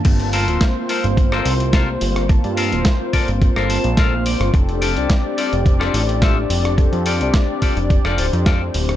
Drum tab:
CC |x---------------|----------------|----------------|----------------|
HH |xxoxx-oxx-oxx-ox|xxoxx-oxx-oxx-ox|xxoxx-oxx-oxx-ox|xxoxx-oxx-oxx-ox|
SD |----o----r--o--r|----o----r--o--r|----o----r--o--r|----o----r--o--r|
BD |o---o---o---o---|o---o-o-o---o---|o---o---o---o---|o---o-o-o---o---|